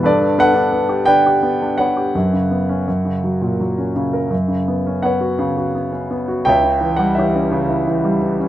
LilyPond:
<<
  \new Staff \with { instrumentName = "Grand piano" } { \time 3/4 \key fis \phrygian \tempo 4 = 84 << { d''8 fis''4 g''4 fis''8~ | fis''2~ fis''8 r8 | r4 fis''2 | g''8. fis''16 e''4. r8 | } \\ { <a' b'>8 <a' b'>4 <b' d''>4 <b' cis''>8~ | <b' cis''>2~ <b' cis''>8 r8 | r4 <b' cis''>2 | <cis'' e''>4 <g' cis''>4. r8 | } >> }
  \new Staff \with { instrumentName = "Grand piano" } { \time 3/4 \key fis \phrygian g,16 d16 b16 d'16 b16 g'16 d16 g'16 b16 d'16 b16 g'16 | fis,16 cis16 b16 cis'16 fis,16 cis16 fis16 ais,16 fis16 cis'16 cis16 ais'16 | fis,16 cis16 b16 cis'16 b16 fis'16 cis16 fis'16 b16 cis'16 b16 fis'16 | cis,16 cis16 e16 g16 e16 cis'16 cis16 e'16 e16 g16 e16 cis'16 | }
>>